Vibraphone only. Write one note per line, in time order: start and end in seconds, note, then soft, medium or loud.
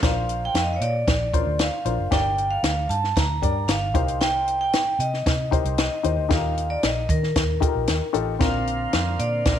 0.03 0.46 F5 medium
0.45 0.54 G5 medium
0.55 0.63 F5 medium
0.63 0.72 D#5 medium
0.73 0.82 C#5 medium
0.73 0.82 F5 medium
0.82 1.62 D5 medium
1.60 2.14 F5 medium
2.12 2.52 G5 medium
2.51 2.91 F5 medium
2.89 3.14 A5 medium
3.16 3.70 A#5 medium
3.68 4.17 F5 medium
4.21 4.60 G5 medium
4.61 5.01 G5 medium
5.00 5.77 D#5 medium
5.78 6.27 D#5 medium
6.31 6.71 F5 medium
6.70 6.82 D5 medium
6.84 7.11 D#5 medium
7.10 8.11 A#4 medium
8.41 9.22 F5 medium
9.20 9.59 D5 medium